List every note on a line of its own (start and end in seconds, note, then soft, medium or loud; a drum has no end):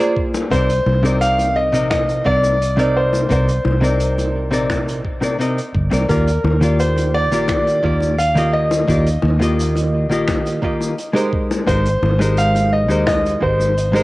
0.00 0.47 A#3 medium
0.00 0.47 F4 medium
0.00 0.47 G#4 medium
0.00 0.48 C5 medium
0.00 0.13 D5 loud
0.00 0.48 D5 loud
0.00 shaker soft
0.17 kick loud
0.34 high bongo loud
0.34 shaker medium
0.50 0.79 C2 loud
0.50 0.70 C3 medium
0.50 0.71 C4 medium
0.50 0.71 D#4 medium
0.50 0.71 A#4 medium
0.50 1.23 C5 loud
0.50 0.72 D5 loud
0.50 kick loud
0.50 closed hi-hat medium
0.50 shaker medium
0.69 closed hi-hat medium
0.69 shaker medium
0.86 1.74 C2 loud
0.86 high bongo medium
1.03 1.69 C3 medium
1.03 1.69 C4 medium
1.03 1.69 D#4 medium
1.03 1.70 A#4 medium
1.03 1.70 D5 medium
1.03 closed hi-hat medium
1.03 shaker medium
1.21 1.57 F5 loud
1.21 closed hi-hat medium
1.21 shaker medium
1.38 closed hi-hat medium
1.38 high bongo medium
1.38 shaker medium
1.56 1.89 D#5 loud
1.72 2.20 A#1 loud
1.72 2.21 C3 medium
1.72 2.21 C4 medium
1.72 2.22 D#4 medium
1.72 2.22 A#4 medium
1.72 2.22 D#5 medium
1.72 shaker medium
1.91 2.27 D#5 loud
1.91 finger snap medium
1.91 kick loud
1.91 closed hi-hat medium
1.91 high bongo medium
1.91 shaker medium
2.08 closed hi-hat medium
2.08 shaker soft
2.24 3.25 C2 medium
2.24 2.56 C3 medium
2.24 2.56 C4 medium
2.24 2.57 D#4 medium
2.24 2.57 A#4 medium
2.24 2.98 D5 loud
2.24 2.57 D5 medium
2.24 kick medium
2.44 high bongo medium
2.44 shaker medium
2.61 closed hi-hat medium
2.61 shaker medium
2.77 3.25 C3 medium
2.77 3.26 C4 medium
2.77 3.26 D#4 medium
2.77 3.27 A#4 medium
2.77 3.27 D5 loud
2.77 closed hi-hat medium
2.77 shaker soft
2.96 3.31 C5 medium
3.13 high bongo medium
3.13 shaker medium
3.29 3.58 C2 loud
3.29 3.49 C3 medium
3.29 3.49 C4 medium
3.29 3.50 D#4 medium
3.29 3.50 A#4 medium
3.29 5.72 C5 medium
3.29 3.51 D5 loud
3.29 kick loud
3.29 closed hi-hat medium
3.29 shaker medium
3.48 closed hi-hat medium
3.48 shaker medium
3.65 4.53 C2 loud
3.65 high bongo medium
3.81 4.47 C3 medium
3.81 4.48 C4 medium
3.81 4.48 D#4 medium
3.81 4.48 A#4 medium
3.81 4.49 D5 medium
3.81 closed hi-hat soft
3.81 shaker medium
4.00 closed hi-hat medium
4.00 shaker medium
4.18 closed hi-hat medium
4.18 high bongo medium
4.18 shaker medium
4.51 5.40 A#1 loud
4.51 5.00 C3 medium
4.51 5.00 C4 medium
4.51 5.00 D#4 medium
4.51 5.01 A#4 medium
4.51 5.01 D5 medium
4.51 closed hi-hat soft
4.51 shaker medium
4.70 finger snap medium
4.70 kick loud
4.70 closed hi-hat medium
4.70 high bongo medium
4.70 shaker medium
4.88 closed hi-hat medium
4.88 shaker soft
5.05 kick medium
5.21 5.35 C3 medium
5.21 5.35 C4 medium
5.21 5.36 D#4 medium
5.21 5.36 A#4 medium
5.21 5.36 D5 medium
5.21 closed hi-hat soft
5.21 high bongo medium
5.21 shaker medium
5.39 5.54 G1 loud
5.39 5.59 C3 medium
5.39 5.59 C4 medium
5.39 5.59 D#4 medium
5.39 5.60 A#4 medium
5.39 5.60 D#5 medium
5.39 closed hi-hat medium
5.39 shaker medium
5.58 closed hi-hat medium
5.58 shaker medium
5.75 5.89 G1 medium
5.75 kick medium
5.91 6.06 C2 medium
5.91 6.05 C3 medium
5.91 6.05 C4 medium
5.91 6.05 D#4 medium
5.91 6.06 A#4 medium
5.91 6.06 D5 medium
5.91 closed hi-hat medium
5.91 high bongo medium
5.91 shaker medium
6.09 6.37 D#2 loud
6.09 6.29 D#3 medium
6.09 6.29 A#3 medium
6.09 6.29 F4 medium
6.09 6.29 G4 medium
6.09 6.81 A#4 medium
6.09 6.30 D5 loud
6.09 kick loud
6.09 closed hi-hat medium
6.09 shaker medium
6.27 closed hi-hat medium
6.27 shaker medium
6.44 7.32 D#2 loud
6.44 high bongo loud
6.61 7.27 D#3 medium
6.61 7.28 A#3 medium
6.61 7.28 F4 medium
6.61 7.28 G4 medium
6.61 7.28 D5 medium
6.61 closed hi-hat medium
6.61 shaker medium
6.80 7.15 C5 medium
6.80 closed hi-hat medium
6.80 shaker medium
6.96 closed hi-hat medium
6.96 high bongo medium
6.96 shaker medium
7.14 8.22 D5 loud
7.31 7.78 A#1 medium
7.31 7.80 D#3 medium
7.31 7.80 A#3 medium
7.31 7.80 F4 medium
7.31 7.81 G4 medium
7.31 7.81 D5 medium
7.31 shaker medium
7.48 finger snap medium
7.48 kick loud
7.48 closed hi-hat medium
7.48 high bongo medium
7.48 shaker medium
7.67 closed hi-hat medium
7.67 shaker soft
7.83 8.83 D#2 medium
7.83 8.14 D#3 medium
7.83 8.15 A#3 medium
7.83 8.15 F4 medium
7.83 8.15 G4 medium
7.83 8.16 D5 loud
7.83 kick medium
8.01 high bongo medium
8.01 shaker medium
8.19 8.51 F5 loud
8.19 closed hi-hat medium
8.19 shaker medium
8.35 8.84 D#3 loud
8.35 8.84 A#3 medium
8.35 8.85 F4 medium
8.35 8.85 G4 medium
8.35 8.85 D#5 loud
8.35 closed hi-hat medium
8.35 shaker medium
8.53 11.29 D#5 loud
8.71 high bongo medium
8.71 shaker medium
8.87 9.16 D#2 medium
8.87 9.07 D#3 medium
8.87 9.08 A#3 medium
8.87 9.08 F4 medium
8.87 9.08 G4 medium
8.87 9.09 D5 medium
8.87 kick loud
8.87 closed hi-hat medium
8.87 shaker medium
9.06 closed hi-hat medium
9.06 shaker soft
9.22 10.10 D#2 loud
9.22 high bongo medium
9.40 10.06 D#3 medium
9.40 10.06 A#3 medium
9.40 10.07 F4 medium
9.40 10.07 G4 medium
9.40 10.07 D#5 loud
9.40 closed hi-hat medium
9.40 shaker medium
9.60 closed hi-hat medium
9.60 shaker medium
9.75 closed hi-hat medium
9.75 high bongo medium
9.75 shaker medium
10.09 10.57 A#1 loud
10.09 10.58 D#3 medium
10.09 10.59 A#3 medium
10.09 10.59 F4 medium
10.09 10.59 G4 medium
10.09 10.60 D#5 medium
10.09 shaker medium
10.28 finger snap medium
10.28 kick loud
10.28 closed hi-hat medium
10.28 high bongo loud
10.28 shaker medium
10.46 closed hi-hat medium
10.46 shaker medium
10.62 10.93 D#3 medium
10.62 10.94 A#3 medium
10.62 10.94 F4 medium
10.62 10.94 G4 medium
10.62 10.95 D#5 loud
10.62 kick medium
10.81 high bongo medium
10.81 shaker medium
10.98 closed hi-hat medium
10.98 shaker medium
11.13 11.62 G#3 medium
11.13 11.63 D#4 medium
11.13 11.63 G4 medium
11.13 11.64 A#4 medium
11.13 11.64 C5 loud
11.13 closed hi-hat medium
11.13 shaker medium
11.33 kick loud
11.51 high bongo loud
11.51 shaker medium
11.67 11.95 G#1 loud
11.67 11.87 G#3 medium
11.67 11.87 D#4 medium
11.67 11.87 G4 medium
11.67 11.88 A#4 medium
11.67 12.39 C5 medium
11.67 11.88 C5 medium
11.67 kick loud
11.67 closed hi-hat medium
11.67 shaker medium
11.85 closed hi-hat medium
11.85 shaker medium
12.02 12.90 G#1 loud
12.02 high bongo medium
12.19 12.85 G#3 medium
12.19 12.86 D#4 medium
12.19 12.86 G4 medium
12.19 12.86 A#4 medium
12.19 12.86 C5 medium
12.19 closed hi-hat medium
12.19 shaker medium
12.37 12.70 F5 loud
12.37 closed hi-hat medium
12.37 shaker medium
12.55 closed hi-hat medium
12.55 high bongo medium
12.55 shaker medium
12.73 13.06 D#5 medium
12.88 13.36 D#2 medium
12.88 13.37 G#3 medium
12.88 13.38 D#4 medium
12.88 13.38 G4 medium
12.88 13.38 A#4 medium
12.88 13.39 C5 loud
12.88 shaker medium
13.07 13.43 D#5 loud
13.07 finger snap medium
13.07 kick loud
13.07 closed hi-hat medium
13.07 high bongo loud
13.07 shaker medium
13.26 closed hi-hat medium
13.26 shaker soft
13.40 14.03 G#1 medium
13.40 13.72 G#3 medium
13.40 13.73 D#4 medium
13.40 13.73 G4 medium
13.40 13.73 A#4 medium
13.40 14.03 C5 medium
13.40 13.73 C5 loud
13.40 kick medium
13.60 high bongo medium
13.60 shaker medium
13.77 closed hi-hat medium
13.77 shaker medium
13.93 14.03 G#3 loud
13.93 14.03 D#4 medium
13.93 14.03 G4 medium
13.93 14.03 A#4 medium
13.93 14.03 C5 loud
13.93 closed hi-hat medium
13.93 shaker medium